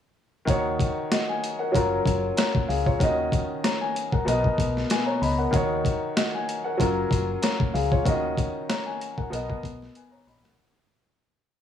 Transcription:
0.45 0.86 D#2 medium
0.45 1.49 D#3 medium
0.45 1.50 D#4 medium
0.45 1.10 F#4 medium
0.45 1.12 C#5 medium
0.45 kick loud
0.45 closed hi-hat medium
0.80 kick medium
0.80 closed hi-hat medium
1.11 1.28 F#4 medium
1.11 1.28 D#5 medium
1.11 snare loud
1.11 closed hi-hat medium
1.29 1.59 G#5 medium
1.44 closed hi-hat medium
1.59 1.74 A#4 medium
1.59 1.89 F#5 medium
1.72 1.99 F#1 medium
1.72 2.51 F#3 medium
1.72 2.51 C#4 medium
1.72 2.37 F4 medium
1.72 2.38 A#4 medium
1.72 kick medium
1.72 closed hi-hat medium
2.06 2.30 F#1 medium
2.06 kick medium
2.06 closed hi-hat medium
2.37 2.67 C#5 medium
2.37 2.67 A#5 medium
2.37 snare loud
2.37 closed hi-hat medium
2.55 kick loud
2.68 2.93 C#2 medium
2.68 2.86 G#4 medium
2.68 2.85 F5 medium
2.68 open hi-hat medium
2.86 3.16 F4 medium
2.86 3.16 C#5 medium
2.86 kick medium
2.99 3.38 D#2 loud
2.99 4.02 D#3 medium
2.99 4.03 C#4 medium
2.99 4.04 F#4 medium
2.99 3.65 D#5 loud
2.99 kick loud
2.99 closed hi-hat medium
3.32 kick medium
3.32 closed hi-hat medium
3.64 3.81 C#5 medium
3.64 3.80 A#5 medium
3.64 snare loud
3.64 closed hi-hat medium
3.81 4.11 G#5 medium
3.96 closed hi-hat medium
4.12 4.26 A#4 medium
4.12 4.42 F#5 medium
4.12 kick medium
4.25 4.51 B1 medium
4.25 5.03 B2 medium
4.25 5.04 B3 medium
4.25 4.90 A#4 medium
4.25 4.91 D#5 loud
4.25 closed hi-hat medium
4.44 kick medium
4.58 4.83 B1 medium
4.58 kick medium
4.58 closed hi-hat medium
4.77 snare soft
4.90 5.07 B4 medium
4.90 5.07 G#5 medium
4.90 snare loud
4.90 closed hi-hat medium
5.06 5.20 C#5 medium
5.06 5.20 A#5 medium
5.22 5.46 C#2 medium
5.22 5.38 D#5 medium
5.22 5.38 B5 medium
5.22 open hi-hat medium
5.38 5.69 A#4 medium
5.38 5.69 F#5 medium
5.51 5.91 D#2 loud
5.51 6.54 D#3 medium
5.51 6.55 D#4 medium
5.51 6.16 F#4 medium
5.51 6.17 C#5 medium
5.51 kick loud
5.51 closed hi-hat medium
5.85 kick medium
5.85 closed hi-hat medium
6.17 6.33 F#4 medium
6.17 6.33 D#5 medium
6.17 snare loud
6.17 closed hi-hat medium
6.34 6.64 G#5 medium
6.49 closed hi-hat medium
6.64 6.80 A#4 medium
6.64 6.95 F#5 medium
6.77 7.04 F#1 loud
6.77 7.56 F#3 medium
6.77 7.57 C#4 medium
6.77 7.43 F4 medium
6.77 7.43 A#4 medium
6.77 kick medium
6.77 closed hi-hat medium
7.11 7.35 F#1 loud
7.11 kick medium
7.11 closed hi-hat medium
7.42 7.73 C#5 medium
7.42 7.72 A#5 medium
7.42 snare loud
7.42 closed hi-hat medium
7.60 kick loud
7.74 7.99 C#2 medium
7.74 7.91 G#4 medium
7.74 7.91 F5 medium
7.74 open hi-hat medium
7.92 8.22 F4 medium
7.92 8.22 C#5 medium
7.92 kick medium
8.04 8.43 D#2 loud
8.04 9.08 D#3 medium
8.04 9.08 C#4 medium
8.04 9.09 F#4 medium
8.04 8.70 D#5 loud
8.04 kick loud
8.04 closed hi-hat medium
8.38 kick medium
8.38 closed hi-hat medium
8.69 8.86 C#5 medium
8.69 8.86 A#5 medium
8.69 snare loud
8.69 closed hi-hat medium
8.86 9.16 G#5 medium
9.01 closed hi-hat medium
9.17 9.31 A#4 medium
9.17 9.48 F#5 medium
9.17 kick medium
9.30 9.56 B1 medium
9.30 10.09 B2 medium
9.30 10.09 B3 medium
9.30 9.95 A#4 medium
9.30 9.96 D#5 loud
9.30 closed hi-hat medium
9.50 kick medium
9.63 9.88 B1 medium
9.63 kick medium
9.63 closed hi-hat medium
9.82 snare soft
9.95 10.13 B4 medium
9.95 10.12 G#5 medium
9.95 closed hi-hat medium
10.11 10.26 C#5 medium
10.11 10.25 A#5 medium
10.27 10.51 A#1 medium
10.27 10.44 D#5 medium
10.27 10.43 B5 medium
10.27 open hi-hat medium
10.43 10.74 A#4 medium
10.43 10.74 F#5 medium
10.43 snare medium

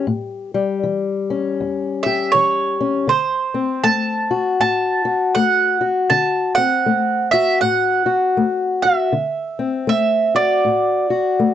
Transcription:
0.00 0.53 G3 medium
0.00 0.47 C#5 medium
0.07 0.77 A2 medium
0.54 3.10 G3 medium
0.83 1.53 E3 medium
1.30 2.79 C#4 medium
1.60 2.29 E2 medium
2.03 3.07 G4 medium
2.03 2.31 E5 medium
2.32 3.04 E3 medium
2.32 3.09 C#5 medium
2.81 3.06 C#4 medium
3.07 3.78 D3 medium
3.07 3.87 C5 medium
3.54 6.13 C4 medium
3.84 4.54 A3 medium
3.84 4.59 A5 loud
4.31 5.05 F#4 medium
4.60 5.30 A2 medium
4.60 5.34 A5 loud
5.05 5.80 F#4 medium
5.35 6.05 A3 medium
5.35 6.09 F#5 medium
5.81 6.61 F#4 medium
6.10 6.80 D3 medium
6.10 6.53 A5 loud
6.55 9.10 C4 medium
6.55 7.31 F#5 medium
6.86 7.56 A3 medium
7.31 8.05 F#4 medium
7.31 7.60 E5 medium
7.61 8.31 A2 medium
7.61 8.86 F#5 medium
8.06 8.82 F#4 medium
8.37 9.07 A3 medium
8.82 9.10 F#4 medium
8.82 9.88 E5 medium
9.12 9.82 D3 medium
9.59 11.54 C4 medium
9.87 10.57 A3 medium
9.87 10.35 E5 medium
10.35 11.09 F#4 medium
10.35 11.54 D5 medium
10.65 11.34 A2 medium
11.10 11.54 F#4 medium
11.39 11.54 A3 medium

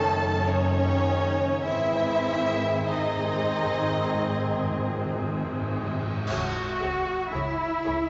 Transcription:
0.00 1.64 F#1 medium
0.00 1.64 F#2 medium
0.00 0.48 D#3 medium
0.00 0.47 A3 loud
0.00 0.46 C#4 medium
0.00 0.48 C#4 medium
0.00 0.47 D#4 medium
0.00 0.48 A4 loud
0.00 0.45 A5 loud
0.00 0.46 A5 loud
0.46 1.61 C#3 medium
0.46 1.63 D#3 medium
0.46 1.64 C#4 loud
0.46 1.62 C#4 medium
0.46 1.62 D#4 medium
0.46 1.64 C#5 medium
0.46 1.64 C#5 loud
0.51 1.64 C#4 medium
1.63 6.07 G#1 medium
1.63 6.07 G#2 medium
1.63 1.73 G#2 soft
1.63 2.84 D#3 medium
1.63 2.86 E3 loud
1.63 2.84 C4 medium
1.63 2.84 E4 loud
1.63 2.84 G#4 medium
1.63 2.83 E5 loud
1.63 2.84 E5 loud
1.75 1.82 G#2 soft
1.84 1.90 G#2 soft
2.01 2.08 G#2 soft
2.10 2.17 G#2 soft
2.18 2.26 G#2 soft
2.27 2.34 G#2 soft
2.35 2.43 G#2 medium
2.45 2.52 G#2 medium
2.53 2.61 G#2 soft
2.62 2.70 G#2 soft
2.71 2.79 G#2 soft
2.80 2.88 G#2 soft
2.86 5.12 D#3 medium
2.86 5.91 D#3 medium
2.86 6.02 C4 medium
2.86 5.90 C4 medium
2.86 5.16 D#4 medium
2.86 6.02 G#4 medium
2.86 5.15 D#5 loud
2.86 5.17 D#5 medium
2.90 2.96 G#2 medium
2.98 3.05 G#2 medium
3.15 3.22 G#2 medium
3.24 3.31 G#2 medium
3.33 3.40 G#2 medium
3.41 3.48 G#2 medium
3.51 3.56 G#2 medium
3.57 3.65 G#2 medium
3.66 3.73 G#2 medium
3.74 3.81 G#2 medium
3.82 3.89 G#2 medium
3.90 3.96 G#2 medium
3.97 4.03 G#2 medium
4.04 4.12 G#2 medium
4.13 4.20 G#2 medium
4.29 4.37 G#2 medium
4.38 4.45 G#2 medium
4.46 4.52 G#2 medium
4.53 4.60 G#2 medium
4.62 4.70 G#2 medium
4.71 4.77 G#2 medium
4.79 4.87 G#2 loud
4.89 4.95 G#2 medium
4.97 5.04 G#2 loud
5.05 5.12 G#2 loud
5.13 5.20 G#2 medium
5.21 5.27 G#2 medium
5.28 5.36 G#2 loud
5.38 5.43 G#2 loud
5.45 5.52 G#2 loud
5.53 5.60 G#2 loud
5.61 5.69 G#2 loud
5.70 5.76 G#2 loud
5.78 5.85 G#2 loud
5.86 5.93 G#2 loud
5.94 6.02 G#2 loud
6.03 6.10 G#2 loud
6.11 6.16 G#2 loud
6.17 6.24 G#2 loud
6.27 6.37 C#2 medium
6.27 7.28 F#4 medium
6.27 6.37 G#4 medium
6.27 6.38 C#5 medium
6.27 6.35 E5 medium
6.27 concert bass drum medium
6.27 crash medium
6.78 6.89 C#2 medium
6.78 6.87 G#4 medium
6.78 6.86 E5 medium
6.82 6.90 C#5 medium
7.31 7.41 C#2 medium
7.31 8.09 E4 medium
7.31 7.40 G#4 medium
7.31 7.42 C#5 medium
7.31 7.39 E5 medium
7.84 7.94 C#2 medium
7.84 7.92 G#4 medium
7.84 7.93 C#5 medium
7.84 7.92 E5 medium

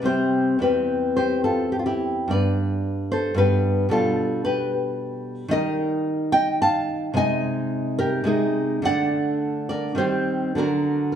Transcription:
0.02 0.58 C3 medium
0.02 0.59 G3 medium
0.02 0.60 C4 medium
0.02 0.59 C5 medium
0.07 0.59 G4 medium
0.59 2.26 E2 medium
0.59 2.27 G3 medium
0.59 2.27 C4 medium
0.59 1.15 B4 medium
0.63 1.14 G4 medium
1.16 1.43 G4 medium
1.16 1.43 C5 medium
1.44 1.71 F4 medium
1.44 1.71 A4 medium
1.72 1.79 G4 medium
1.79 1.85 F4 medium
1.86 2.29 E4 medium
1.86 2.30 G4 medium
2.28 3.33 G2 medium
2.28 3.35 G3 medium
2.28 3.35 B3 medium
2.28 3.09 D5 loud
2.32 3.09 B4 medium
3.12 3.37 A4 medium
3.12 3.37 C5 loud
3.34 3.88 G2 medium
3.34 3.88 G3 medium
3.34 3.89 B3 medium
3.34 3.89 B4 loud
3.39 3.89 G4 medium
3.89 5.46 B2 medium
3.89 5.47 G3 medium
3.89 5.47 D4 medium
3.89 4.41 F4 medium
3.89 4.42 A4 loud
4.45 4.70 G4 medium
4.45 4.70 B4 loud
5.48 7.11 D#3 medium
5.48 7.12 G3 medium
5.48 7.12 D#4 medium
5.48 6.31 D#5 loud
5.53 6.31 A#4 medium
6.32 6.60 D#5 loud
6.32 6.60 G5 loud
6.62 7.13 F5 loud
6.62 7.15 A5 loud
7.14 8.22 C3 medium
7.14 8.22 G#3 medium
7.14 8.23 D#4 medium
7.14 7.95 G#5 loud
7.18 7.95 D#5 loud
7.99 8.25 G4 medium
7.99 8.25 A#4 loud
8.24 8.82 C3 medium
8.24 8.83 G#3 medium
8.24 8.83 D#4 medium
8.24 8.84 G#4 loud
8.82 9.93 D3 medium
8.82 9.94 A3 medium
8.82 9.94 D4 medium
8.82 9.66 F#5 loud
8.86 9.66 D5 medium
9.69 9.97 A#4 medium
9.69 9.97 D5 loud
9.95 10.55 D#3 medium
9.95 10.56 G3 medium
9.95 10.55 C4 medium
9.95 10.56 C5 loud
9.99 10.55 G4 medium
10.55 11.14 D3 medium
10.55 11.15 F#3 medium
10.55 11.15 D4 medium
10.55 11.10 A#4 loud
10.59 11.09 F#4 medium
11.12 11.15 A#4 medium

